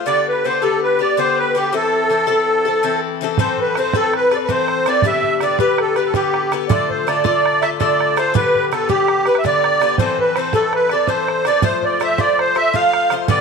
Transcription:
0.06 D3 B3 G4 B4 D5
0.28 B4
0.44 D3 B3 G4 B4 C5
0.62 D3 B3 G4 A4 B4
0.83 B4
0.99 B3 G4 B4 D5
1.17 D3 B3 G4 B4 C5
1.38 B4
1.55 D3 B3 G4 B4
1.73 E3 C4 E4 A4
2.10 E3 C4 E4 A4
2.27 E3 C4 E4 A4
2.65 C4 E4 A4
2.83 E3 C4 E4 A4
3.21 E3 C4 E4 A4
3.38 E3 C4 A4 B4 C5, bodhran
3.58 B4, bodhran
3.75 E3 C4 A4 B4 C5, bodhran
3.93 E3 C4 A4 B4, bodhran
4.13 B4, bodhran
4.31 C4 A4 B4 D5, bodhran
4.45 B4
4.49 E3 C4 A4 C5, bodhran
4.68 bodhran
4.86 E3 C4 A4 B4 D5, bodhran
5.02 D3 B3 G4 B4, bodhran
5.06 E5
5.23 bodhran
5.40 D3 B3 G4 B4 D5, bodhran
5.59 D3 B3 G4 B4, bodhran
5.78 A4, bodhran
5.96 B3 G4 B4, bodhran
6.06 A4
6.14 D3 B3 G4 B4, bodhran
6.34 bodhran
6.52 D3 B3 G4 B4, bodhran
6.68 D3 A3 F4 A4 D5, bodhran
6.89 C5, bodhran
7.07 D3 A3 F4 A4 D5, bodhran
7.24 D3 A3 F4 A4 D5, bodhran
7.46 bodhran
7.62 A3 F4 A4 E5, bodhran
7.80 D3 A3 F4 A4 D5, bodhran
8.01 bodhran
8.17 D3 A3 F4 A4 C5, bodhran
8.34 D3 B3 G4 B4, bodhran
8.55 bodhran
8.71 D3 B3 G4 A4 B4, bodhran
8.89 D3 B3 G4 B4, bodhran
9.08 bodhran
9.26 B3 G4 B4, bodhran
9.35 E5, bodhran
9.44 D3 B3 G4 B4 D5, bodhran
9.64 bodhran
9.81 D3 B3 G4 B4, bodhran
9.98 E3 C4 A4 B4 C5, bodhran
10.18 B4, bodhran
10.35 E3 C4 A4 B4 C5, bodhran
10.53 E3 C4 A4 B4, bodhran
10.73 B4, bodhran
10.89 A4 B4 D5, bodhran
10.94 C4
11.07 E3 C4 A4 C5, bodhran
11.28 bodhran
11.45 E3 C4 A4 B4 D5, bodhran
11.62 F3 A3 F4 C5, bodhran
11.82 D5, bodhran
12.00 F3 A3 F4 C5 E5, bodhran
12.18 F3 A3 F4 C5 D5, bodhran
12.39 C5, bodhran
12.55 A3 F4 C5 E5, bodhran
12.73 F3 A3 F4 C5 F5, bodhran
12.93 bodhran
13.10 F3 A3 F4 C5, bodhran
13.28 D3 B3 G4 B4 D5, bodhran

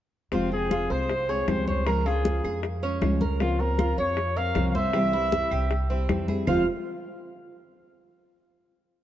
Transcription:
0.32 F1 C3 F3 G#3 C4 F4, high bongo, high conga
0.52 F3 G#3 C4 F4 G#4, high conga
0.71 F4, high bongo, high conga, claves
0.90 C2 G#3 C4 F4 C5, high conga
1.10 muted nylon-string guitar stroke, high bongo, high conga
1.29 G#3 C4 F4 G#4 C#5, high conga
1.48 C#2 C3 F3 G#3 C4 F4 C5, high bongo, low bongo, high conga, claves
1.67 G#3 C4 F4 C5 C#5, high conga
1.86 C#3 F3 G#3 C#4 F4 G#4 A#4, high bongo, high conga, claves
2.06 F3 G#3 C#4 F4 G#4, high bongo, high conga
2.25 high bongo, high conga
2.44 F2 G#3 C#4 F4 G#4, high bongo, high conga, claves
2.63 muted nylon-string guitar stroke, high bongo, high conga
2.83 G#3 C#4 F4, high conga
3.02 C#2 C#3 F3 G#3 C#4 F4, high bongo, low bongo, high conga, claves
3.21 G#3 C#4 F4 A#4, high bongo, high conga
3.40 C#3 F3 A#3 C4 F4, high bongo, high conga
3.59 F3 A#3 C4 F4 A#4, high conga
3.78 F4, high bongo, high conga, claves
3.97 F2 A#3 C4 F4 C#5, high conga
4.17 muted nylon-string guitar stroke, high bongo, high conga
4.36 A#3 C4 F4 A#4 F5, high conga
4.55 C2 C#3 F3 A#3 C4 F4, high bongo, low bongo, high conga, claves
4.68 F5
4.75 A#3 C4 F4 C5 E5, high conga
4.93 C3 E3 G3 C4 E4 G4, high bongo, high conga, claves
5.13 E3 G3 C4 E4, high bongo, high conga
5.32 high bongo, high conga
5.51 C2 G3 C4 E4 G4, high bongo, high conga, claves
5.71 muted nylon-string guitar stroke, high bongo, high conga
5.90 G3 C4 E4, high conga
6.09 F2 C3 E3 G3 C4 E4, high bongo, low bongo, high conga, claves
6.28 G3 C4 E4 G#4, high bongo, high conga
6.47 F1 F2 C3 F3 G#3 C4 F4 C5 F5, low bongo, low conga, claves

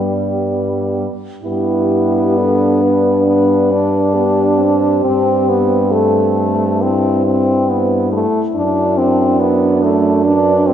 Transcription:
Already playing: G2 G3 B3 G4
1.44 G2 B3 E4 G4
2.37 D4 A4
2.82 B4
3.27 B3
3.72 D4
4.15 B3 G4
4.59 C4
5.05 G2 C4
5.49 B3
5.92 A3 A4
6.81 C4 E4
7.25 C4
7.69 B3 E4
8.12 A3
8.54 F#2 D4
8.98 C4
9.40 B3
9.83 A3
10.25 D4 B4
10.68 C4

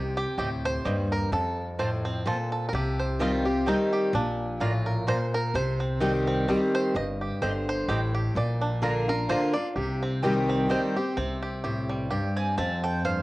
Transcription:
Already playing: C2 C3 G4
0.17 G4
0.38 D2 A2 C4 G4 D#5 G5
0.65 C5
0.85 D#2 G2 G3 C4 G4 D#5 G5
1.12 A#4
1.32 F2 A4
1.79 A2 C4 F4 C5 A5
2.05 C4
2.26 A#2 C4 F4 A4 C5 A5
2.52 A4
2.69 A#4
2.73 C2 C3 G4
2.99 C5
3.19 D#3 G3 C4 F4 G4 D#5 G5
3.45 C4 G4
3.66 D#3 G3 C4 D#4 G4 D#5 G5
3.93 G4
4.13 A#1 A#2 D4
4.60 A2 A#3 F4 D5 A#5
4.86 A#4
5.07 A#2 A#3 F4 C5 D5 A#5
5.34 A#4
5.54 C2 C3 C5
5.80 C4
6.00 D#3 G3 C4 G4 D#5 G5
6.27 C4
6.48 D#3 G3 C4 G4 D#5 G5
6.75 C5
6.94 G1 G2 D#5
7.21 G4
7.41 G1 D3 C4 G4 C5 D#5 G5
7.69 C5
7.88 A1 A2 C4 G4 D#5 G5
8.14 G4
8.35 A#1 A#2 D5
8.61 D4
8.82 D3 A#3 D4 F4 A#4 D5 A#5
9.08 D4 F4 A#4
9.29 D3 A#3 D4 F4 C5 D5 A#5
9.53 D4 F4 D5
9.76 C2 C3 G4
10.03 C4
10.22 D#3 G3 C4 G4 D#5 G5
10.49 C4
10.69 D#3 G3 C4 G4 C5 D#5 G5
10.96 C4 G4
11.17 C2 C3 C4
11.42 G4
11.64 A2 G4
11.90 G3
12.11 G2 G4 G5
12.37 C4 G#5
12.58 F2 C4 A5
12.84 A4 G5
13.05 G2 C5 F5

